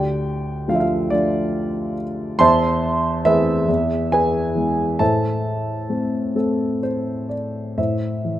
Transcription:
Already playing: D2 G4 D5 G5
0.68 F3 A3 D4 F5
0.72 F4 E5
0.80 F4 F5
1.10 F3 A3 D4 F4 D5
2.39 E2 C5 E5 A5 C6
3.25 E3 A3 C4 E4 G#4 B4 E5
3.68 E2
4.12 G#4 B4 G#5
4.55 E3 G#3 B3
4.99 A2 A4 C5 E5 A5
5.90 A3 C4
6.35 A3 C4 A4
6.83 C5
7.29 D5
7.78 A2 C5 E5
8.25 E3

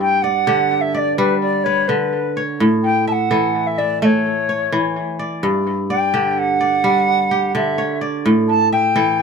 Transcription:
Already playing: G2 A3 D5
0.00 G5
0.22 D5 F#5
0.47 D3 G4
0.81 E5
0.93 D5 E5
0.98 D5
1.17 G3 B4
1.41 D5
1.64 B4 C#5
1.88 D3 B4
2.37 C#5
2.60 A2
2.84 G5
3.07 E5 A5
3.12 F#5
3.31 E3 A4
3.67 E5
3.78 D5 E5
4.02 A3 C#5 E5
4.49 C#5
4.72 E3
5.19 D5
5.43 G2
5.90 D5 G5
6.14 D3 G4
6.31 G5
6.39 F#5
6.61 D5
6.84 G3
7.31 G4
7.55 D3 E5
7.78 C#5
8.01 D5
8.26 A2
8.49 A5
8.72 E5 G5
8.96 E3 A4

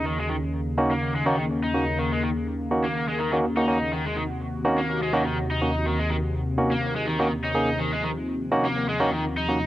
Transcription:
Already playing: D#2 C#3
0.05 D#3 A#3
0.18 G#3
0.29 D#3
0.78 A#3 C#4 D#4 F#4
0.91 A#3
1.15 G#3
1.26 D#3 A#3 C#4 D#4 F#4
1.39 D#3
1.64 D#4
1.74 A#3 C#4 D#4 F#4
1.99 D#3
2.12 G#3
2.23 D#3
2.71 A#3 C#4 D#4 F#4
2.85 A#3
3.09 G#3
3.20 D#3
3.33 D#3 A#3 C#4 D#4 F#4
3.57 A#3 C#4 D#4 F#4
3.68 A#3 C#4 D#4 F#4
3.92 C3 D#3 F#4
4.06 G#3
4.16 D#3
4.65 A#3 C#4 D#4 F#4
4.78 A#3
5.02 G#3
5.13 D#3 A#3 C#4 D#4 F#4
5.27 D#3
5.51 D#4
5.61 A#3 C#4 D#4 F#4
5.86 D#3
5.99 G#3
6.10 D#3
6.58 A#3 C#4 D#4 F#4
6.71 A#3
6.96 G#3
7.07 D#3
7.20 D#3 A#3 C#4 D#4 F#4
7.44 D#4
7.55 A#3 C#4 D#4 G#4
7.79 D#3 F3
7.92 G#3
8.03 D#3
8.51 A#3 C#4 D#4 F#4
8.65 A#3
8.89 G#3
9.00 D#3 A#3 C#4 D#4 F#4
9.13 D#3
9.37 D#4
9.49 A#3 C#4 D#4 F#4

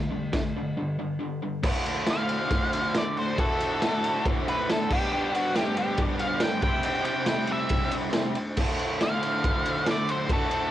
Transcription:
0.10 G2 D3
0.32 G2 D3, kick, snare, crash
0.56 G2 D3
0.77 G2 D3
0.99 G2 D3
1.19 G2 D3
1.42 G2 D3
1.63 D2 A2 D3 A3, kick, crash
1.67 F#4
1.86 ride
2.07 F5, snare, ride
2.29 ride
2.51 kick, ride
2.73 ride
2.95 D5, snare, ride
3.17 C5, ride
3.37 D2 A2 D3 A3 A4, kick, ride
3.41 F#4
3.60 ride
3.82 snare, ride
4.04 ride
4.26 kick, ride
4.48 B4, ride
4.70 A4, snare, ride
4.90 G2 D3 G3 B3 D4 G4, kick, crash
4.94 G4
5.13 G4
5.35 F#4, ride
5.56 G4, snare, ride
5.77 G4, ride
5.98 kick, ride
6.19 F5, ride
6.40 G5, snare, ride
6.62 C3 G3 C4 G5, kick, ride
6.66 E4 G4 C5
6.83 G5, ride
7.05 G5, ride
7.26 G5, snare, ride
7.47 ride
7.52 E5
7.69 kick, ride
7.92 ride
8.13 snare, ride
8.35 ride
8.57 D2 A2 D3, kick, crash
8.61 A3 F#4
8.79 ride
9.01 F5, snare, ride
9.22 ride
9.44 kick, ride
9.65 ride
9.86 snare, ride
9.91 D5
10.08 C5, ride
10.28 D2 A2 D3 A3, kick, ride
10.33 F#4 A4
10.51 ride

